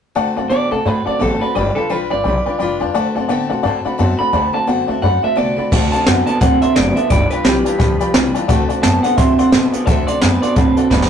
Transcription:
0.15 D2 D3 A3 C4 F#4 A4 D5 F#5 A5
0.36 F#2 D3 A3 C4 F#4 A4 D5 F#5 A5
0.50 A2 D3 A3 B3 C4 F#4 A4 D5 F#5 A5
0.71 B2 D3 A3 C4 F#4 A4 D5 F#5 A5
0.85 A2 D3 A3 C4 F#4 A4 B4 D5 F#5 B5
1.05 D3 A3 F#4 A4 D5 F#5 A5, muted upright bass stroke
1.10 C4
1.19 A1 D3 A3 B3 C4 F#4 A4 D5 F#5 A5
1.40 D3 A3 F#4 A4 B4 D5 F#5 A5, muted upright bass stroke
1.45 C4
1.54 G1 G2 D3 G3 D4 F4 B4 D5 G5 B5
1.75 G2 D3 D4 F4 A4 B4 D5 G5 B5, muted upright bass stroke
1.90 B1 G2 E3 G3 D4 F4 B4 D5 G5 B5
2.10 G1 G2 D3 D4 F4 B4 D5 G5 B5
2.24 B1 G2 D3 G3 D4 F4 D5 G5 B5
2.28 B4
2.45 G2 D3 F4 B4 D5 G5 B5, muted upright bass stroke
2.50 D4
2.59 F1 G2 E3 G3 D4 F4 B4 D5 G5 B5
2.80 E2 G2 D3 D4 F4 B4 D5 G5 A5
2.94 D2 D3 A3 C4 F#4 A4 D5 F#5 A5
3.15 F#2 D3 A3 F#4 A4 D5 F#5 A5
3.19 C4
3.28 A2 D3 A3 B3 C4 F#4 A4 D5 F#5 A5
3.49 B2 D3 A3 C4 F#4 A4 D5 F#5 A5
3.63 A2 D3 A3 C4 F#4 A4 D5 F#5 A5
3.85 D3 A3 C4 F#4 A4 D5 F#5 B5, muted upright bass stroke
3.98 F#2 D3 A3 B3 C4 F#4 A4 D5 F#5 A5
4.19 D3 A3 C4 F#4 A4 D5 F#5 A5 B5, muted upright bass stroke
4.33 D2 D3 A3 C4 F#4 A4 D5 F#5 A5
4.53 D3 A3 C4 F#4 A4 D5 F#5 A5, muted upright bass stroke
4.67 F#2 D3 A3 B3 C4 F#4 A4 D5 F#5 A5
4.88 D2 D3 A3 C4 F#4 A4 D5 E5 F#5 A5
5.02 F#2 D3 A3 C4 F#4 A4 D5 F#5 B5
5.22 D3 A3 C4 F#4 A4 D5 E5 F#5 A5, muted upright bass stroke
5.36 C2 D3 A3 B3 C4 F#4 A4 D5 F#5 A5
5.56 D2 D3 A3 C4 F#4 A4 D5 F#5 B5
5.71 D2 D3 A3 C4 F#4 A4 D5 F#5 A5, kick, crash
5.92 C4 F#4 A4 D5 F#5 A5, muted upright bass stroke, closed hi-hat
6.06 F#2 D3 A3 B3 C4 F#4 A4 D5 F#5 A5, snare, closed hi-hat
6.27 D3 B3 C4 F#4 A4 D5 F#5 A5, muted upright bass stroke, closed hi-hat
6.40 A2 D3 A3 C4 F#4 A4 D5 F#5 A5, kick, snare, closed hi-hat
6.62 C4 F#4 A4 D5 E5 F#5 C6, muted upright bass stroke, closed hi-hat
6.75 F#1 D3 A3 B3 C4 F#4 A4 D5 F#5 A5, snare, closed hi-hat
6.96 D3 B3 C4 F#4 A4 D5 E5 F#5 A5, closed hi-hat
7.10 G1 G2 D3 G3 D4 F4 B4 D5 G5 B5, kick, closed hi-hat
7.30 D4 F4 B4 D5 G5 B5, muted upright bass stroke, closed hi-hat
7.44 B1 G2 E3 G3 D4 F4 G4 B4 D5 G5 B5, snare, closed hi-hat
7.64 G2 E3 D4 F4 B4 D5 G5 A5, closed hi-hat
7.79 D2 G2 F3 G3 D4 F4 B4 D5 G5 B5, kick, snare, closed hi-hat
7.99 D4 F4 B4 D5 G5 B5, muted upright bass stroke, closed hi-hat
8.14 C2 G2 E3 G3 D4 F4 B4 D5 G5 D6, snare, closed hi-hat
8.34 G2 E3 D4 F4 B4 D5 E5 G5 A5, muted upright bass stroke, closed hi-hat
8.48 D2 D3 A3 C4 F#4 A4 D5 F#5 A5, kick, closed hi-hat
8.69 C4 F#4 A4 D5 F#5 A5, muted upright bass stroke, closed hi-hat
8.83 F#2 D3 A3 B3 C4 F#4 A4 D5 F#5 A5, snare, closed hi-hat
9.03 D3 B3 C4 F#4 A4 D5 F#5 A5, closed hi-hat
9.17 A2 D3 A3 C4 F#4 A4 D5 E5 F#5 C6, kick, snare, closed hi-hat
9.38 C4 F#4 A4 D5 F#5 C6, muted upright bass stroke, closed hi-hat
9.51 B2 D3 A3 B3 C4 F#4 A4 D5 E5 F#5 C6, snare, closed hi-hat
9.72 D3 B3 F#4 A4 D5 F#5 A5, muted upright bass stroke, closed hi-hat
9.76 C4
9.85 D2 D3 A3 C4 F#4 D5 E5 F#5 A5, kick, closed hi-hat
9.89 A4
10.07 F#4 A4 D5 F#5 C6, muted upright bass stroke, closed hi-hat
10.11 C4
10.21 F#2 D3 A3 B3 C4 F#4 A4 B4 D5 F#5 A5, snare, closed hi-hat
10.42 D3 B3 C4 F#4 A4 D5 F#5 C6, muted upright bass stroke, closed hi-hat
10.56 A2 D3 C4 F#4 A4 B4 D5 F#5 A5, kick, closed hi-hat
10.76 C4 F#4 A4 D5 F#5 A5, muted upright bass stroke, closed hi-hat
10.90 F#1 D3 A3 B3 C4 F#4 A4 B4 D5 F#5 A5, kick, snare
11.02 snare

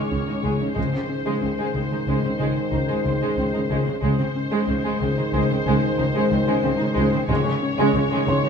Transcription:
Already playing: G#2 D#3 G#3 C#4 C#5 C#6 D6 D#6 F6
0.11 C#2 C#3 G#3 C#4
0.28 C#3 G#3 D#4
0.43 C#2 C#3 G#3
0.60 C#3 G#3 C#4
0.76 C#2 G#2 C#3 D#3 G#3 C5
0.92 C#3 G#3 C4
1.09 C#4
1.26 C#3 G#3
1.42 C#2 C#3 G#3 C4 C#4
1.58 C#3 G#3
1.74 C#2 C#3 G#3 C4
1.91 C#3 G#3 D#4
2.07 C#2 C#3 G#3
2.24 C#3 G#3 C4
2.39 C#2 C#3 G#3
2.72 C#2 C#3 G#3 D#4
2.88 C#3 G#3
3.05 C#2 C#3 G#3 C4
3.22 C#3 G#3
3.37 C#2 C#3 G#3 C4 C#4
3.54 C#3 G#3 D#4
3.70 C#2 C#3 G#3
3.85 C#3 G#3 C4
4.02 C#2 G#2 C#3 D#3 G#3 C5
4.19 C#3 G#3 C4
4.36 C#4
4.51 C#3 G#3
4.67 C#2 C#3 G#3 C4 C#4
4.84 C#3 G#3
5.00 C#2 C#3 G#3 C4
5.17 C#3 G#3 D#4
5.34 C#2 C#3 G#3
5.49 C#3 G#3 C4
5.66 C#2 C#3 G#3
5.98 C#2 C#3 G#3 D#4
6.15 C#3 G#3
6.31 C#2 C#3 G#3 C4
6.47 C#3 G#3
6.63 C#2 C#3 G#3 C4 C#4
6.79 C#3 G#3 D#4
6.95 C#2 C#3 G#3
7.13 C#3 G#3 C4
7.29 C#2 G#2 C#3 D#3 G#3 C#4 C#5
7.46 C#3 G#3 C#4
7.62 C#4
7.78 C#3 G#3
7.94 C#2 C#3 G#3 C#4
8.11 C#3 G#3
8.26 C#2 C#3 G#3 C#4 C#5 C6
8.44 C#3 G#3 D#4

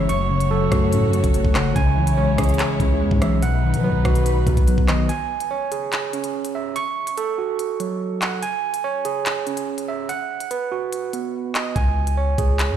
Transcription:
Already playing: F#1 C#5
0.09 F#2 A3 F#4 C#6, closed hi-hat
0.30 C#3
0.40 closed hi-hat
0.51 F#3 A4
0.72 F#2 A3 F#4, kick, cross-stick, closed hi-hat
0.93 A2 C#4, closed hi-hat
1.08 F#2
1.13 F#3 A3, closed hi-hat
1.24 F#1, kick, closed hi-hat
1.34 F#3, closed hi-hat
1.45 F#1, kick
1.55 C#3 F#5, cross-stick, clap, closed hi-hat
1.76 C#2 C#3 G#3 E4 C#5 G#5, kick, closed hi-hat
1.97 E3
2.07 B1, closed hi-hat
2.17 G#3 C#5
2.38 C#2 C#4 G#4, kick, cross-stick, closed hi-hat
2.44 closed hi-hat
2.49 closed hi-hat
2.54 closed hi-hat
2.59 C#5, clap, closed hi-hat
2.80 C#2 C#4, kick, closed hi-hat
3.01 E2 G#3
3.11 G#2, kick
3.22 B1 E3 E5, cross-stick, closed hi-hat
3.42 B2 F#3 D#4 B4 F#5, closed hi-hat
3.63 D#3
3.74 F#3, closed hi-hat
3.84 F#3 B4
3.89 B1
4.05 B1 B3 F#4, kick, cross-stick, closed hi-hat
4.15 closed hi-hat
4.26 B4, closed hi-hat
4.47 B2 B3, kick, closed hi-hat
4.57 B1, kick, closed hi-hat
4.67 F#3, closed hi-hat
4.78 B1, kick
4.88 D#3 D#5, cross-stick, clap, closed hi-hat
5.09 G#5, closed hi-hat
5.40 closed hi-hat
5.51 C#5
5.72 G#4, closed hi-hat
5.92 clap, closed hi-hat
6.13 C#4, closed hi-hat
6.24 closed hi-hat
6.45 closed hi-hat
6.55 E5
6.76 C#6, closed hi-hat
7.07 closed hi-hat
7.18 A4, closed hi-hat
7.38 F#4
7.59 closed hi-hat
7.80 F#3, closed hi-hat
8.22 F#5, clap, closed hi-hat
8.43 G#5, closed hi-hat
8.74 closed hi-hat
8.84 C#5
9.05 G#4, closed hi-hat
9.26 clap, closed hi-hat
9.47 C#4, closed hi-hat
9.57 closed hi-hat
9.78 closed hi-hat
9.88 E5
10.09 F#5, closed hi-hat
10.40 closed hi-hat
10.51 B4, closed hi-hat
10.72 F#4
10.93 closed hi-hat
11.13 B3, closed hi-hat
11.55 D#5, clap, closed hi-hat
11.76 C#2 G#5, kick, closed hi-hat
12.07 closed hi-hat
12.17 C#5
12.38 C#2 G#4, kick, closed hi-hat
12.59 clap, closed hi-hat
12.70 G#2

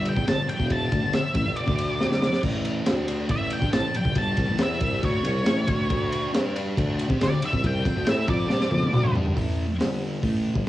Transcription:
Already playing: G1 G2 D3 G3
0.05 G5, ride
0.16 E2 E3 B3, kick
0.26 G1 G2 D3 A5, snare, ride
0.48 G1 G5, muted distorted electric guitar stroke, ride
0.59 E1 E2 B2 E3, kick
0.70 A5, kick, ride
0.91 D2 D3 A3, kick, ride
1.02 G1 G2 D3
1.13 E5, snare, ride
1.34 A1 A2 E3, kick, ride
1.45 G1 G2 D3
1.56 D5, ride
1.66 D2 D3 A3 D4, kick
1.78 ride
2.01 snare
2.09 G1 G2 D3, snare
2.22 snare
2.33 snare
2.43 A1 A2 E3 A3, kick, crash
2.65 ride
2.86 D2 D3 A3 D4, snare, ride
3.08 ride
3.29 A1 A2 E3 A3 E5, kick, ride
3.50 G5, ride
3.61 G2 G3 D4, kick
3.72 A1 A2 E3 A5, snare, ride
3.94 A1 G5, muted distorted electric guitar stroke, ride
4.05 G1 G2 D3, kick
4.15 G1 G2 D3 G3 A5, kick, ride
4.37 C2 C3 G3, kick, ride
4.48 A1 A2 E3
4.58 E2 E3 B3 E4, snare, ride
4.63 E5
4.79 C2 C3 G3 C4, kick, ride
5.02 D2 D3 A3 D4 C#5, kick, ride
5.23 C2 C3 G3 C4, ride
5.44 A1 A2 E3 A3, snare, ride
5.67 D2 D3 A3 D4, kick, ride
5.89 D2 D3 A3 D4, kick, ride
6.12 ride
6.32 G2 G3 D4 G4, snare, ride
6.56 ride
6.77 D2 D3 A3 D4, kick, ride
6.99 ride
7.08 C3 C4 G4, kick
7.20 D2 D3 A3 D5, snare, ride
7.42 D2 E5, muted distorted electric guitar stroke, ride
7.53 C2 C3 G3, kick
7.64 C2 C3 G3 C4 G5, kick, ride
7.85 F2 F3 C4, kick, ride
7.96 D2 D3 A3
8.05 A2 A3 E4 A4 E5, snare, ride
8.27 F2 F3 C4 F4 D5, kick, ride
8.47 G2 G3 D4 G4, snare
8.60 snare
8.69 F2 F3 C4 F4, high tom
8.82 high tom
8.90 D2 D3 A3 D4, mid tom
9.05 mid tom
9.12 G3 D4 G4, floor tom
9.26 floor tom
9.33 A1 A2 E3 A3, kick
9.37 open hi-hat
9.67 A1, muted distorted electric guitar stroke
9.78 G1 G2 D3 G3, snare, open hi-hat
10.20 A1 A2 E3 A3, kick, open hi-hat
10.55 G1 G2 D3, kick

